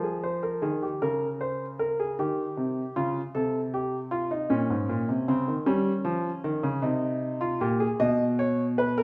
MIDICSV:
0, 0, Header, 1, 2, 480
1, 0, Start_track
1, 0, Tempo, 777202
1, 630, Time_signature, 6, 3, 24, 8
1, 5578, End_track
2, 0, Start_track
2, 0, Title_t, "Grand piano"
2, 0, Program_c, 0, 0
2, 0, Note_on_c, 0, 53, 70
2, 22, Note_on_c, 0, 68, 56
2, 141, Note_off_c, 0, 68, 0
2, 145, Note_on_c, 0, 72, 63
2, 263, Note_off_c, 0, 72, 0
2, 265, Note_on_c, 0, 70, 57
2, 372, Note_off_c, 0, 53, 0
2, 383, Note_off_c, 0, 70, 0
2, 383, Note_on_c, 0, 68, 59
2, 384, Note_on_c, 0, 51, 69
2, 503, Note_off_c, 0, 68, 0
2, 509, Note_on_c, 0, 67, 53
2, 535, Note_off_c, 0, 51, 0
2, 626, Note_off_c, 0, 67, 0
2, 629, Note_on_c, 0, 70, 74
2, 630, Note_on_c, 0, 49, 63
2, 779, Note_off_c, 0, 70, 0
2, 869, Note_on_c, 0, 72, 67
2, 1018, Note_off_c, 0, 72, 0
2, 1108, Note_on_c, 0, 70, 67
2, 1225, Note_off_c, 0, 70, 0
2, 1233, Note_on_c, 0, 68, 67
2, 1328, Note_off_c, 0, 49, 0
2, 1348, Note_off_c, 0, 68, 0
2, 1353, Note_on_c, 0, 51, 64
2, 1353, Note_on_c, 0, 67, 66
2, 1500, Note_off_c, 0, 51, 0
2, 1588, Note_on_c, 0, 48, 61
2, 1737, Note_off_c, 0, 48, 0
2, 1815, Note_off_c, 0, 67, 0
2, 1829, Note_on_c, 0, 49, 64
2, 1829, Note_on_c, 0, 65, 69
2, 1977, Note_off_c, 0, 49, 0
2, 1977, Note_off_c, 0, 65, 0
2, 2067, Note_on_c, 0, 69, 77
2, 2068, Note_on_c, 0, 48, 68
2, 2215, Note_off_c, 0, 69, 0
2, 2308, Note_on_c, 0, 67, 69
2, 2456, Note_off_c, 0, 67, 0
2, 2539, Note_on_c, 0, 65, 74
2, 2658, Note_off_c, 0, 65, 0
2, 2662, Note_on_c, 0, 63, 72
2, 2762, Note_off_c, 0, 48, 0
2, 2778, Note_on_c, 0, 61, 75
2, 2779, Note_off_c, 0, 63, 0
2, 2780, Note_on_c, 0, 46, 68
2, 2897, Note_off_c, 0, 46, 0
2, 2903, Note_on_c, 0, 44, 64
2, 3019, Note_off_c, 0, 44, 0
2, 3021, Note_on_c, 0, 46, 70
2, 3137, Note_off_c, 0, 46, 0
2, 3142, Note_on_c, 0, 48, 69
2, 3244, Note_off_c, 0, 61, 0
2, 3257, Note_off_c, 0, 48, 0
2, 3262, Note_on_c, 0, 49, 65
2, 3262, Note_on_c, 0, 60, 77
2, 3377, Note_off_c, 0, 49, 0
2, 3384, Note_on_c, 0, 51, 65
2, 3410, Note_off_c, 0, 60, 0
2, 3497, Note_on_c, 0, 61, 71
2, 3498, Note_off_c, 0, 51, 0
2, 3499, Note_on_c, 0, 55, 84
2, 3647, Note_off_c, 0, 55, 0
2, 3734, Note_on_c, 0, 53, 87
2, 3884, Note_off_c, 0, 53, 0
2, 3978, Note_on_c, 0, 51, 80
2, 4094, Note_off_c, 0, 51, 0
2, 4096, Note_on_c, 0, 49, 77
2, 4195, Note_off_c, 0, 61, 0
2, 4213, Note_off_c, 0, 49, 0
2, 4213, Note_on_c, 0, 48, 83
2, 4216, Note_on_c, 0, 63, 67
2, 4567, Note_off_c, 0, 63, 0
2, 4575, Note_on_c, 0, 65, 73
2, 4682, Note_off_c, 0, 48, 0
2, 4693, Note_off_c, 0, 65, 0
2, 4698, Note_on_c, 0, 67, 73
2, 4700, Note_on_c, 0, 46, 82
2, 4815, Note_off_c, 0, 67, 0
2, 4817, Note_on_c, 0, 68, 69
2, 4849, Note_off_c, 0, 46, 0
2, 4935, Note_off_c, 0, 68, 0
2, 4939, Note_on_c, 0, 47, 81
2, 4939, Note_on_c, 0, 75, 90
2, 5088, Note_off_c, 0, 75, 0
2, 5181, Note_on_c, 0, 73, 79
2, 5331, Note_off_c, 0, 73, 0
2, 5423, Note_on_c, 0, 71, 84
2, 5540, Note_off_c, 0, 71, 0
2, 5544, Note_on_c, 0, 70, 83
2, 5578, Note_off_c, 0, 47, 0
2, 5578, Note_off_c, 0, 70, 0
2, 5578, End_track
0, 0, End_of_file